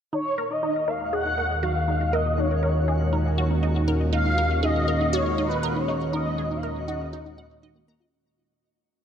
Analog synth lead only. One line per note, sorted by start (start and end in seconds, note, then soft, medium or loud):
0.13 0.52 C#5 loud
0.51 0.90 D#5 loud
0.88 1.12 F5 medium
1.13 1.64 F#5 loud
1.63 2.14 F5 loud
2.13 2.31 D#5 loud
2.31 2.40 D#5 medium
2.38 3.13 C#5 medium
4.13 4.59 F5 loud
4.63 5.15 D#5 loud
5.13 5.47 C#5 loud
5.47 5.82 B4 medium
5.80 6.13 C#5 medium
6.14 6.53 D#5 loud
6.56 6.65 F5 medium
6.63 7.63 D#5 medium